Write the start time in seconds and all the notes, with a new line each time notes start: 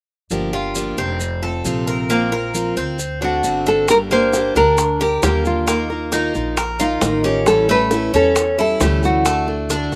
0.30 G1 D3 F3 A#3 D4 G4, maracas
0.53 A#3 D4 F4 G4
0.75 D3 F3 A#3 D4 G4, maracas
0.98 F1 A#3 C4 D4 G4, maracas
1.20 muted steel-string acoustic guitar stroke, maracas
1.42 A3 C4 F4 A4
1.65 A#1 C3 F3 A3 C4 F4, maracas
1.87 A#4, maracas
2.10 F3 A#3 C4 F4, maracas
2.32 A#3 C4 F4 A#4
2.54 F3 A#3 C4 F4, maracas
2.76 D2 A#3 C4 F4, maracas
2.99 muted steel-string acoustic guitar stroke, maracas
3.21 A3 C4 D4 F#4
3.43 G1 D3 A3 C4 F#4, maracas
3.66 D4 A4, maracas
3.88 D3 G3 A#3 D4 G4 A#4, high bongo, maracas
4.11 A#3 D4 G4 C5, high bongo
4.33 D3 G3 A#3 D4 G4, high bongo, maracas
4.55 D2 A#3 D4 G4 A#4, high bongo, maracas
4.78 muted steel-string acoustic guitar stroke, high bongo, maracas
5.00 A#3 D4 G4 A#4, high bongo
5.22 D#2 D3 G3 A#3 D4 G4, high bongo, low bongo, maracas
5.45 F4, maracas
5.67 D#3 A#3 D#4 F4 A#4, high bongo, maracas
5.90 D#4 F4 A#4, high bongo
6.12 D#3 A#3 D#4 F4 A#4, high bongo, maracas
6.34 A#1 D#4 F4 A#4, high bongo, maracas
6.57 A#4, muted steel-string acoustic guitar stroke, high bongo, maracas
6.79 D#4 F4 A#4, maracas
7.01 A1 D#3 A#3 D#4 F4 A#4, high bongo, low bongo, maracas
7.24 C#4 G4, high bongo, maracas
7.46 E3 G3 C#4 E4 A4, high bongo, maracas
7.68 G3 A3 C#4 E4 B4, high bongo
7.91 E3 G3 C#4 E4, high bongo, maracas
8.13 E2 G3 C#4 E4 A4, high bongo, maracas
8.36 muted steel-string acoustic guitar stroke, high bongo, maracas
8.58 G3 C#4 E4 A4, high bongo
8.80 D2 E3 G3 A3 C#4 E4 G4, high bongo, low bongo, maracas
9.03 F#4, maracas
9.25 D3 A3 D4 F#4, high bongo, maracas
9.47 A3 D4 F#4, high bongo
9.70 D3 A3 D4 F#4, high bongo, maracas
9.92 A1 F#4, high bongo, maracas